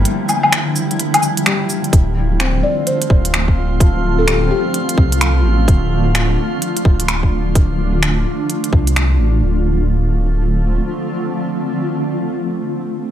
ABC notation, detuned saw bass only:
X:1
M:4/4
L:1/8
Q:"Swing 16ths" 1/4=128
K:Dm
V:1 name="Detuned saw bass" clef=bass
z8 | D,,,3 z2 D,,,3 | D,,,3 z2 C,,2 A,,, | D,,,3 z2 D,,,3 |
D,,,3 z2 C,,2 A,,, | D,,,6 z2 | z8 |]